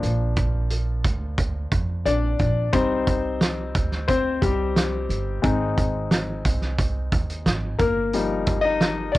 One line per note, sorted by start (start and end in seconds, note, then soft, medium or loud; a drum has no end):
0.00 1.00 A#1 medium
0.00 0.15 F3 soft
0.00 0.15 A#3 soft
0.00 0.15 D4 medium
0.00 closed hi-hat medium
0.36 kick medium
0.36 closed hi-hat medium
0.70 closed hi-hat medium
1.04 1.68 D2 medium
1.04 kick medium
1.04 closed hi-hat medium
1.38 kick medium
1.38 closed hi-hat medium
1.72 2.03 F2 medium
1.72 kick medium
1.72 closed hi-hat medium
2.05 2.37 A#1 medium
2.05 2.70 D4 medium
2.05 2.75 D5 medium
2.05 closed hi-hat medium
2.39 2.71 A#1 medium
2.39 kick medium
2.39 closed hi-hat soft
2.73 3.71 C2 medium
2.73 4.42 G3 soft
2.73 4.05 C4 medium
2.73 5.40 D#4 medium
2.73 4.04 C5 medium
2.73 kick medium
2.73 closed hi-hat medium
3.07 kick medium
3.07 closed hi-hat medium
3.41 snare medium
3.41 closed hi-hat medium
3.75 4.38 D2 medium
3.75 kick medium
3.75 closed hi-hat medium
3.92 snare soft
4.08 4.40 C4 medium
4.08 4.39 C5 medium
4.08 kick medium
4.08 closed hi-hat medium
4.42 5.06 C2 medium
4.42 5.06 G3 medium
4.42 5.05 G4 medium
4.42 kick medium
4.42 closed hi-hat medium
4.76 snare medium
4.76 closed hi-hat medium
5.09 5.41 G1 medium
5.09 closed hi-hat medium
5.42 6.41 G#1 medium
5.42 7.75 G#3 soft
5.42 7.75 C4 soft
5.42 7.75 D#4 medium
5.42 kick medium
5.42 closed hi-hat medium
5.78 kick medium
5.78 closed hi-hat medium
6.11 snare medium
6.11 closed hi-hat medium
6.45 7.08 C2 medium
6.45 kick medium
6.45 closed hi-hat medium
6.62 snare soft
6.79 kick medium
6.79 closed hi-hat medium
7.12 7.44 D#2 medium
7.12 kick medium
7.12 closed hi-hat medium
7.30 closed hi-hat soft
7.46 7.77 G#1 medium
7.46 snare medium
7.46 closed hi-hat medium
7.79 9.15 G1 medium
7.79 8.60 A#3 medium
7.79 8.66 A#4 medium
7.79 kick medium
7.79 closed hi-hat medium
8.13 9.18 F3 soft
8.13 9.18 G3 soft
8.13 8.63 D#4 medium
8.13 closed hi-hat medium
8.47 kick medium
8.47 closed hi-hat medium
8.61 9.11 D#4 medium
8.61 9.10 D#5 medium
8.81 snare medium
8.81 closed hi-hat medium
9.12 9.18 F1 medium
9.12 9.18 D5 medium
9.12 kick medium
9.12 closed hi-hat medium